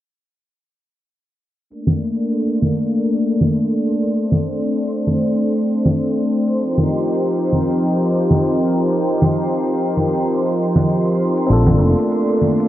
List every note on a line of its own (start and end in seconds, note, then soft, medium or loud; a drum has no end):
1.70 6.56 A3 medium
1.70 4.13 A#3 medium
1.70 6.56 D4 medium
1.70 12.68 C6 medium
1.70 shaker soft
1.87 high conga medium
1.87 shaker soft
2.19 shaker medium
2.33 shaker soft
2.50 shaker soft
2.62 high conga medium
2.80 shaker medium
2.94 shaker soft
3.11 shaker soft
3.41 high conga medium
3.41 shaker medium
3.55 shaker soft
3.72 shaker soft
4.03 shaker medium
4.15 11.46 C4 medium
4.15 shaker soft
4.32 high conga medium
4.32 shaker soft
4.64 shaker medium
4.77 shaker soft
4.95 shaker soft
5.07 high conga medium
5.25 shaker medium
5.39 shaker soft
5.56 shaker soft
5.85 high conga medium
5.85 shaker medium
6.00 shaker soft
6.17 shaker soft
6.47 shaker medium
6.60 11.46 F3 medium
6.60 11.46 D#4 medium
6.60 11.46 G4 medium
6.60 11.46 A#4 medium
6.60 shaker medium
6.78 high conga medium
6.78 shaker soft
7.09 shaker medium
7.22 shaker medium
7.39 shaker soft
7.53 high conga medium
7.70 shaker medium
7.83 shaker soft
8.01 shaker soft
8.31 high conga medium
8.31 shaker medium
8.45 shaker soft
8.61 shaker soft
8.92 shaker medium
9.05 shaker medium
9.22 high conga medium
9.22 shaker soft
9.53 shaker medium
9.67 shaker soft
9.84 shaker soft
9.97 high conga medium
10.15 shaker medium
10.28 shaker medium
10.46 shaker soft
10.76 high conga medium
10.76 shaker medium
10.90 shaker soft
11.07 shaker soft
11.37 shaker medium
11.46 11.80 A#1 medium
11.46 12.68 A3 medium
11.46 12.68 A#3 medium
11.46 12.68 C4 medium
11.46 12.68 D4 medium
11.51 12.68 F4 medium
11.51 12.68 A4 medium
11.51 shaker soft
11.67 high conga medium
11.67 shaker soft
11.80 11.93 F1 medium
11.98 shaker medium
12.12 shaker soft
12.29 shaker soft
12.42 high conga medium
12.60 shaker medium